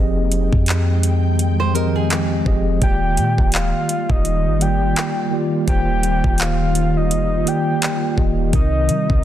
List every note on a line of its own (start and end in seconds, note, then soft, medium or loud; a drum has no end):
0.00 0.50 F1 loud
0.00 2.79 D#3 medium
0.00 0.93 F3 medium
0.00 2.79 G#3 medium
0.00 0.93 C4 medium
0.00 0.93 G4 medium
0.00 0.94 G#4 medium
0.00 0.94 D#5 loud
0.00 2.79 G5 medium
0.32 closed hi-hat medium
0.53 2.42 F2 loud
0.53 kick medium
0.66 clap loud
0.66 closed hi-hat medium
1.03 closed hi-hat medium
1.39 closed hi-hat medium
1.60 1.75 C5 medium
1.73 2.24 F3 medium
1.73 2.24 C4 medium
1.73 2.25 G4 medium
1.73 2.25 G#4 medium
1.73 1.94 A#4 medium
1.73 2.25 D#5 medium
1.73 closed hi-hat medium
1.96 2.78 G#4 medium
2.10 clap loud
2.10 closed hi-hat medium
2.45 2.81 F1 loud
2.45 2.71 F3 medium
2.45 2.72 C4 medium
2.45 2.72 G4 medium
2.45 2.72 G#4 medium
2.45 2.73 D#5 medium
2.45 kick loud
2.81 3.19 D#1 loud
2.81 3.79 D#3 medium
2.81 9.24 D#3 medium
2.81 8.50 G3 medium
2.81 3.79 A#3 medium
2.81 3.79 F4 medium
2.81 8.49 F4 medium
2.81 3.80 G4 medium
2.81 3.80 D5 medium
2.81 3.50 G5 loud
2.81 kick loud
2.81 closed hi-hat medium
3.17 3.37 A#2 loud
3.17 closed hi-hat medium
3.38 3.73 D#1 loud
3.38 kick medium
3.52 4.12 F5 loud
3.52 clap loud
3.52 closed hi-hat medium
3.89 closed hi-hat medium
4.10 4.47 D#1 loud
4.10 4.63 D#5 loud
4.10 kick medium
4.25 closed hi-hat medium
4.46 4.94 G1 loud
4.59 5.09 D#3 medium
4.59 5.10 A#3 medium
4.59 5.10 F4 medium
4.59 5.11 G4 medium
4.59 5.11 D5 medium
4.59 5.32 G5 medium
4.59 closed hi-hat medium
4.96 clap loud
4.96 closed hi-hat medium
5.31 5.57 D#3 medium
5.31 5.57 A#3 medium
5.31 5.58 F4 medium
5.31 5.58 G4 medium
5.31 5.58 D5 medium
5.66 6.22 D#1 loud
5.66 6.64 D#3 medium
5.66 6.65 A#3 medium
5.66 6.65 F4 medium
5.66 6.65 G4 medium
5.66 6.66 C5 medium
5.66 6.42 G5 loud
5.66 kick loud
5.66 closed hi-hat medium
6.03 closed hi-hat medium
6.24 7.12 D#1 loud
6.24 kick medium
6.38 6.98 F5 loud
6.38 clap loud
6.38 closed hi-hat medium
6.75 closed hi-hat medium
6.97 7.49 D#5 medium
7.11 7.45 F1 loud
7.11 closed hi-hat medium
7.45 7.95 D#3 medium
7.45 7.96 A#3 medium
7.45 7.96 F4 medium
7.45 7.96 G4 medium
7.45 7.97 D5 medium
7.45 8.18 G5 medium
7.45 closed hi-hat medium
7.82 clap loud
7.82 closed hi-hat medium
8.16 8.52 D#1 loud
8.16 8.43 D#3 medium
8.16 8.43 A#3 medium
8.16 8.43 F4 medium
8.16 8.44 G4 medium
8.16 8.44 D#5 medium
8.16 kick medium
8.52 8.91 C2 loud
8.52 9.24 C3 medium
8.52 9.24 A#3 medium
8.52 9.24 C4 medium
8.52 9.24 D#4 medium
8.52 9.24 A#4 medium
8.52 9.24 D#5 loud
8.52 9.24 D#5 medium
8.52 kick loud
8.52 closed hi-hat medium
8.89 9.09 G3 medium
8.89 closed hi-hat medium
9.10 9.24 C2 loud
9.10 kick medium